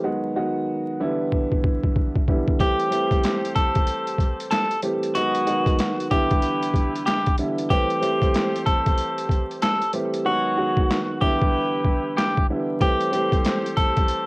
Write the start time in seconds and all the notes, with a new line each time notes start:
0.04 D#3 F#3 G#3 B3 F#4
0.36 D#3 F#3 G#3 B3 F#4
1.00 D3 E3 G3 B3 E4
1.32 kick
1.52 kick
1.64 kick
1.84 kick
1.96 kick
2.16 kick
2.28 D3 E3 G3 B3 E4, kick
2.48 kick
2.60 E3 G3 A3 C4 G4 A4 C5, kick, closed hi-hat
2.79 closed hi-hat
2.90 E3 G3 A3 C4 G4, closed hi-hat
3.11 kick, closed hi-hat
3.23 snare, clap, closed hi-hat
3.45 closed hi-hat
3.55 A4, kick, closed hi-hat
3.75 kick, closed hi-hat
3.87 closed hi-hat
4.07 closed hi-hat
4.18 kick, closed hi-hat
4.40 closed hi-hat
4.51 A4, snare, clap, closed hi-hat
4.71 closed hi-hat
4.82 E3 G3 A3 C4 G4, closed hi-hat
5.03 closed hi-hat
5.14 D#3 F#3 G#3 B3 F#4 G#4 B4 D#5, closed hi-hat
5.35 closed hi-hat
5.46 D#3 F#3 G#3 B3 F#4, closed hi-hat
5.66 kick, closed hi-hat
5.79 snare, clap, closed hi-hat
6.00 closed hi-hat
6.11 D3 E3 G3 B3 E4 G4 B4, kick, closed hi-hat
6.31 kick, closed hi-hat
6.42 closed hi-hat
6.63 closed hi-hat
6.74 kick, closed hi-hat
6.95 closed hi-hat
7.06 G4, snare, clap, closed hi-hat
7.26 kick, closed hi-hat
7.38 D3 E3 G3 B3 E4, closed hi-hat
7.58 closed hi-hat
7.70 E3 G3 A3 C4 G4 A4 C5, kick, closed hi-hat
7.90 closed hi-hat
8.01 E3 G3 A3 C4 G4, closed hi-hat
8.22 kick, closed hi-hat
8.34 snare, clap, closed hi-hat
8.56 closed hi-hat
8.66 A4, kick, closed hi-hat
8.86 kick, closed hi-hat
8.98 closed hi-hat
9.18 closed hi-hat
9.29 kick, closed hi-hat
9.51 closed hi-hat
9.62 A4, snare, clap, closed hi-hat
9.82 closed hi-hat
9.93 E3 G3 A3 C4 G4, closed hi-hat
10.14 closed hi-hat
10.25 D#3 F#3 G#3 B3 F#4 G#4 C#5
10.57 D#3 F#3 G#3 B3 F#4
10.77 kick
10.91 snare, clap
11.21 D3 E3 G3 B3 E4 G4 B4, kick
11.42 kick
11.84 kick
12.17 G4, snare, clap
12.37 kick
12.50 D3 E3 G3 B3 E4
12.81 E3 G3 A3 C4 G4 A4 C5, kick, closed hi-hat
13.01 closed hi-hat
13.12 E3 G3 A3 C4 G4, closed hi-hat
13.32 kick, closed hi-hat
13.45 snare, clap, closed hi-hat
13.66 closed hi-hat
13.77 A4, kick, closed hi-hat
13.97 kick, closed hi-hat
14.08 closed hi-hat